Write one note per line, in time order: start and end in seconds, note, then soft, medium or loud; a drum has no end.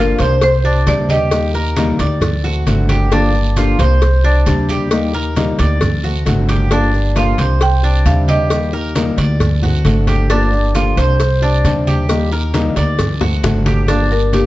0.00 0.13 G1 medium
0.00 0.18 D3 medium
0.00 0.18 F3 medium
0.00 0.18 A#3 medium
0.00 0.19 D4 medium
0.00 0.18 F4 medium
0.00 0.18 G4 medium
0.00 0.43 A#4 medium
0.19 0.83 C2 loud
0.19 0.42 A#3 soft
0.19 0.41 D4 soft
0.19 0.41 G4 medium
0.19 0.63 C5 medium
0.19 cowbell medium
0.19 high conga soft
0.19 short guiro medium
0.19 maracas soft
0.41 0.84 C5 loud
0.41 muted nylon-string guitar stroke medium
0.41 cowbell loud
0.41 high conga soft
0.41 long guiro medium
0.41 maracas medium
0.64 0.87 C4 soft
0.64 1.08 D4 medium
0.64 0.86 D4 soft
0.64 0.86 G4 medium
0.64 high conga soft
0.64 maracas soft
0.87 1.93 D#2 loud
0.87 1.31 C3 medium
0.87 1.31 G3 medium
0.87 1.31 C4 medium
0.87 1.31 D4 medium
0.87 1.32 G4 medium
0.87 1.08 D5 loud
0.87 cowbell medium
0.87 high conga loud
0.87 short guiro medium
0.87 maracas medium
1.09 1.53 G4 medium
1.09 1.51 D#5 loud
1.09 high conga medium
1.09 short guiro medium
1.09 maracas soft
1.31 1.53 D#3 medium
1.31 1.53 G3 medium
1.31 1.53 A#3 medium
1.31 1.53 D#4 medium
1.31 1.53 G4 medium
1.31 cowbell loud
1.31 high conga soft
1.31 long guiro medium
1.31 maracas medium
1.54 1.76 A#3 soft
1.54 1.76 D#4 soft
1.54 1.76 G4 medium
1.54 1.98 A#4 medium
1.54 high conga soft
1.54 maracas soft
1.76 1.98 D#3 medium
1.76 1.98 G3 medium
1.76 1.99 A#3 medium
1.76 1.99 D#4 medium
1.76 1.98 G4 medium
1.76 cowbell medium
1.76 high conga loud
1.76 short guiro medium
1.76 maracas medium
1.99 2.63 D2 loud
1.99 2.21 A#3 soft
1.99 2.21 D#4 medium
1.99 2.21 G4 medium
1.99 2.43 D5 medium
1.99 cowbell medium
1.99 high conga soft
1.99 short guiro medium
1.99 maracas soft
2.21 muted nylon-string guitar stroke medium
2.21 cowbell loud
2.21 high conga soft
2.21 low conga medium
2.21 long guiro medium
2.21 maracas medium
2.44 2.66 A3 soft
2.44 2.66 C4 medium
2.44 2.65 F#4 medium
2.44 2.88 F#4 medium
2.44 high conga soft
2.44 maracas soft
2.66 3.73 G1 loud
2.66 3.10 D3 medium
2.66 3.11 A3 medium
2.66 3.11 C4 medium
2.66 3.11 F#4 medium
2.66 cowbell medium
2.66 high conga medium
2.66 short guiro medium
2.66 maracas medium
2.89 3.11 G4 medium
2.89 cowbell medium
2.89 high conga medium
2.89 short guiro medium
2.89 maracas soft
3.11 3.33 D3 medium
3.11 3.33 F3 medium
3.11 3.33 A#3 medium
3.11 3.33 D4 medium
3.11 3.55 D4 medium
3.11 3.33 G4 medium
3.11 cowbell loud
3.11 high conga soft
3.11 long guiro medium
3.11 maracas medium
3.34 3.56 A#3 soft
3.34 3.56 D4 soft
3.34 3.56 G4 soft
3.34 high conga soft
3.34 maracas soft
3.56 3.78 D3 medium
3.56 3.78 F3 medium
3.56 3.79 A#3 medium
3.56 3.79 D4 medium
3.56 3.78 F4 medium
3.56 3.78 G4 medium
3.56 cowbell medium
3.56 high conga medium
3.56 short guiro medium
3.56 maracas medium
3.79 4.42 C2 loud
3.79 4.01 A#3 soft
3.79 4.01 D4 soft
3.79 4.01 G4 medium
3.79 4.23 C5 medium
3.79 cowbell medium
3.79 high conga soft
3.79 short guiro medium
3.79 maracas soft
4.01 muted nylon-string guitar stroke medium
4.01 cowbell loud
4.01 high conga soft
4.01 long guiro medium
4.01 maracas medium
4.24 4.46 C4 soft
4.24 4.68 D4 medium
4.24 4.46 D4 soft
4.24 4.45 G4 medium
4.24 high conga soft
4.24 maracas soft
4.46 5.53 D#2 loud
4.46 4.90 C3 medium
4.46 4.90 G3 medium
4.46 4.91 C4 medium
4.46 4.91 D4 medium
4.46 4.91 G4 medium
4.46 cowbell medium
4.46 high conga medium
4.46 short guiro medium
4.46 maracas medium
4.69 5.13 G4 medium
4.69 high conga medium
4.69 short guiro medium
4.69 maracas soft
4.91 5.13 D#3 medium
4.91 5.13 G3 medium
4.91 5.13 A#3 medium
4.91 5.13 D#4 medium
4.91 5.12 G4 medium
4.91 cowbell loud
4.91 high conga soft
4.91 long guiro medium
4.91 maracas medium
5.14 5.36 A#3 soft
5.14 5.36 D#4 soft
5.14 5.35 G4 soft
5.14 5.58 A#4 medium
5.14 high conga soft
5.14 maracas soft
5.36 5.58 D#3 medium
5.36 5.58 G3 medium
5.36 5.58 A#3 medium
5.36 5.58 D#4 medium
5.36 5.58 G4 medium
5.36 cowbell medium
5.36 high conga loud
5.36 short guiro medium
5.36 maracas medium
5.59 6.22 D2 loud
5.59 5.81 A#3 soft
5.59 5.81 D#4 soft
5.59 5.80 G4 medium
5.59 6.03 D5 medium
5.59 cowbell medium
5.59 high conga soft
5.59 short guiro medium
5.59 maracas soft
5.81 muted nylon-string guitar stroke medium
5.81 cowbell loud
5.81 high conga soft
5.81 low conga medium
5.81 long guiro medium
5.81 maracas medium
6.04 6.25 A3 soft
6.04 6.25 C4 soft
6.04 6.25 F#4 medium
6.04 6.47 F#4 medium
6.04 high conga soft
6.04 maracas soft
6.25 7.32 G1 loud
6.25 6.69 D3 medium
6.25 6.70 A3 medium
6.25 6.70 C4 medium
6.25 6.71 F#4 medium
6.25 cowbell medium
6.25 high conga loud
6.25 short guiro medium
6.25 maracas medium
6.49 6.71 G4 medium
6.49 cowbell medium
6.49 high conga medium
6.49 short guiro medium
6.49 maracas soft
6.70 6.92 D3 medium
6.70 6.93 F3 medium
6.70 6.93 A#3 medium
6.70 6.93 D4 medium
6.70 7.15 D4 loud
6.70 6.92 G4 medium
6.70 7.18 D5 medium
6.70 cowbell loud
6.70 high conga soft
6.70 long guiro medium
6.70 maracas medium
6.93 7.15 A#3 soft
6.93 7.15 D4 soft
6.93 7.15 G4 soft
6.93 high conga soft
6.93 maracas soft
7.15 7.37 D3 medium
7.15 7.37 F3 medium
7.15 7.38 A#3 medium
7.15 7.38 D4 medium
7.15 7.38 F4 medium
7.15 7.37 G4 medium
7.15 7.63 F5 medium
7.15 cowbell medium
7.15 high conga medium
7.15 short guiro medium
7.15 maracas medium
7.38 8.02 C2 loud
7.38 7.61 A#3 soft
7.38 7.60 D4 soft
7.38 7.60 G4 medium
7.38 7.82 C5 medium
7.38 cowbell medium
7.38 high conga soft
7.38 short guiro medium
7.38 maracas soft
7.61 8.03 G5 loud
7.61 muted nylon-string guitar stroke medium
7.61 cowbell loud
7.61 high conga soft
7.61 long guiro medium
7.61 maracas medium
7.83 8.05 C4 soft
7.83 8.27 D4 medium
7.83 8.05 D4 soft
7.83 8.05 G4 soft
7.83 high conga soft
7.83 maracas soft
8.05 9.12 D#2 medium
8.05 8.50 C3 medium
8.05 8.50 G3 medium
8.05 8.50 C4 medium
8.05 8.50 D4 medium
8.05 8.51 G4 medium
8.05 8.27 F5 medium
8.05 cowbell medium
8.05 high conga medium
8.05 short guiro medium
8.05 maracas medium
8.28 8.72 G4 medium
8.28 9.37 D#5 medium
8.28 high conga medium
8.28 short guiro medium
8.28 maracas soft
8.50 8.72 D#3 medium
8.50 8.72 G3 medium
8.50 8.73 A#3 medium
8.50 8.73 D#4 medium
8.50 8.72 G4 medium
8.50 cowbell loud
8.50 high conga soft
8.50 long guiro medium
8.50 maracas medium
8.73 8.95 A#3 soft
8.73 8.95 D#4 soft
8.73 8.95 G4 medium
8.73 9.17 A#4 medium
8.73 high conga soft
8.73 maracas soft
8.95 9.17 D#3 medium
8.95 9.17 G3 medium
8.95 9.17 A#3 medium
8.95 9.17 D#4 medium
8.95 9.16 G4 medium
8.95 cowbell medium
8.95 high conga loud
8.95 short guiro medium
8.95 maracas medium
9.17 9.81 D2 loud
9.17 9.40 A#3 soft
9.17 9.40 D#4 soft
9.17 9.39 G4 soft
9.17 9.62 D5 medium
9.17 cowbell medium
9.17 high conga soft
9.17 short guiro medium
9.17 maracas soft
9.40 muted nylon-string guitar stroke medium
9.40 cowbell loud
9.40 high conga soft
9.40 low conga medium
9.40 long guiro medium
9.40 maracas medium
9.62 9.84 A3 soft
9.62 9.85 C4 medium
9.62 9.84 F#4 medium
9.62 10.07 F#4 medium
9.62 high conga soft
9.62 low conga medium
9.62 maracas soft
9.85 10.91 G1 loud
9.85 10.29 D3 medium
9.85 10.29 A3 medium
9.85 10.30 C4 medium
9.85 10.30 F#4 medium
9.85 cowbell medium
9.85 high conga medium
9.85 short guiro medium
9.85 maracas medium
10.07 10.30 G4 medium
10.07 cowbell medium
10.07 high conga medium
10.07 short guiro medium
10.07 maracas soft
10.30 10.52 D3 medium
10.30 10.52 F3 medium
10.30 10.52 A#3 medium
10.30 10.74 D4 loud
10.30 10.52 D4 medium
10.30 10.51 G4 medium
10.30 cowbell loud
10.30 high conga soft
10.30 long guiro medium
10.30 maracas medium
10.52 10.74 A#3 soft
10.52 10.75 D4 soft
10.52 10.74 G4 soft
10.52 high conga soft
10.52 maracas soft
10.75 10.96 D3 medium
10.75 10.97 F3 medium
10.75 10.97 A#3 medium
10.75 10.97 D4 medium
10.75 10.97 F4 medium
10.75 10.96 G4 medium
10.75 cowbell medium
10.75 high conga medium
10.75 short guiro medium
10.75 maracas medium
10.97 11.61 C2 loud
10.97 11.20 A#3 soft
10.97 11.19 D4 medium
10.97 11.19 G4 medium
10.97 11.41 C5 medium
10.97 cowbell medium
10.97 high conga soft
10.97 short guiro medium
10.97 maracas soft
11.20 muted nylon-string guitar stroke medium
11.20 cowbell loud
11.20 high conga soft
11.20 long guiro medium
11.20 maracas medium
11.42 11.64 C4 soft
11.42 11.86 D4 medium
11.42 11.64 D4 medium
11.42 11.63 G4 medium
11.42 high conga soft
11.42 maracas soft
11.64 12.70 D#2 medium
11.64 12.09 C3 medium
11.64 12.08 G3 medium
11.64 12.09 C4 medium
11.64 12.09 D4 medium
11.64 12.09 G4 medium
11.64 cowbell medium
11.64 high conga medium
11.64 short guiro medium
11.64 maracas medium
11.87 12.31 G4 medium
11.87 high conga medium
11.87 short guiro medium
11.87 maracas soft
12.09 12.31 D#3 medium
12.09 12.31 G3 medium
12.09 12.31 A#3 medium
12.09 12.31 D#4 medium
12.09 12.30 G4 medium
12.09 cowbell loud
12.09 high conga soft
12.09 long guiro medium
12.09 maracas medium
12.31 12.53 A#3 soft
12.31 12.54 D#4 soft
12.31 12.53 G4 medium
12.31 12.75 A#4 medium
12.31 high conga soft
12.31 maracas soft
12.54 12.75 D#3 medium
12.54 12.76 G3 medium
12.54 12.76 A#3 medium
12.54 12.76 D#4 medium
12.54 12.75 G4 loud
12.54 cowbell medium
12.54 high conga loud
12.54 short guiro medium
12.54 maracas medium
12.76 13.40 D2 medium
12.76 12.99 A#3 soft
12.76 12.98 D#4 soft
12.76 12.98 G4 medium
12.76 13.20 D5 medium
12.76 cowbell medium
12.76 high conga soft
12.76 short guiro medium
12.76 maracas soft
12.99 muted nylon-string guitar stroke medium
12.99 cowbell loud
12.99 high conga soft
12.99 low conga medium
12.99 long guiro medium
12.99 maracas medium
13.21 13.44 A3 soft
13.21 13.43 C4 soft
13.21 13.65 F#4 medium
13.21 13.43 F#4 medium
13.21 high bongo medium
13.21 high conga soft
13.21 low conga medium
13.21 maracas soft
13.43 14.46 G1 medium
13.43 13.87 D3 medium
13.43 13.88 A3 medium
13.43 13.88 C4 medium
13.43 13.89 F#4 medium
13.43 cowbell medium
13.43 high bongo loud
13.43 high conga medium
13.43 short guiro medium
13.43 maracas medium
13.66 13.88 G4 medium
13.66 cowbell medium
13.66 low bongo medium
13.66 high conga medium
13.66 short guiro medium
13.66 maracas soft
13.88 14.10 D3 medium
13.88 14.10 F3 medium
13.88 14.10 A#3 medium
13.88 14.32 D4 medium
13.88 14.10 D4 medium
13.88 14.09 G4 medium
13.88 cowbell loud
13.88 high conga soft
13.88 long guiro medium
13.88 maracas medium
14.10 14.32 A#3 soft
14.10 14.33 D4 soft
14.10 14.32 G4 soft
14.10 14.33 A#4 medium
14.10 high conga soft
14.10 maracas soft
14.32 14.46 D3 medium
14.32 14.46 F3 medium
14.32 14.46 A#3 medium
14.32 14.46 D4 medium
14.32 14.46 G4 medium
14.32 cowbell medium
14.32 high conga medium
14.32 short guiro medium
14.32 maracas medium